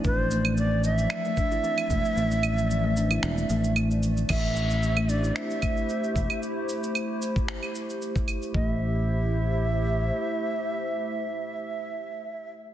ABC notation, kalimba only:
X:1
M:4/4
L:1/16
Q:"Swing 16ths" 1/4=113
K:Am
V:1 name="Kalimba"
C z A,2 A, z4 A, D E C z A,2 | A, z4 A, D E C z A,2 A, z3 | A, z4 A, D E C z A,2 A, z3 | z16 |
A,2 z12 z2 | z16 |]